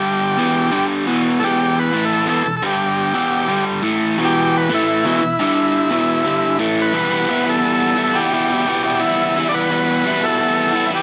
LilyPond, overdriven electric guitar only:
\new Staff \with { instrumentName = "Overdriven electric guitar" } { \clef bass \time 4/4 \key e \minor \tempo 4 = 174 <g, d g>4 <e, b, e>4 <g, d g>4 <e, b, e>4 | <e, b, e>4. <a, e a>4 <e, b, e>8 <e, b,>8 <g, d g>8~ | <g, d g>4 <e, b, e>4 <g, d g>4 <a, e a>4 | <e, b, e>4. <a, e a>4 <e, b, e>8 <e, b,>8 <g, d g>8~ |
<g, d g>4 <e, b, e>4 <g, d g>4 <a, e a>4 | <e, b, e g b e'>8 <e g b e'>8 <e, b, e g b e'>8 <e g b e'>4. <e g b e'>8 <e g b e'>8 | <e, b, e g b e'>8 <e g b e'>8 <e, b, e g b e'>8 <e g b e'>4. <e g b e'>8 <e g b e'>8 | <e, b, e g b e'>8 <e g b e'>8 <e, b, e g b e'>8 <e g b e'>4. <e g b e'>8 <e g b e'>8 | }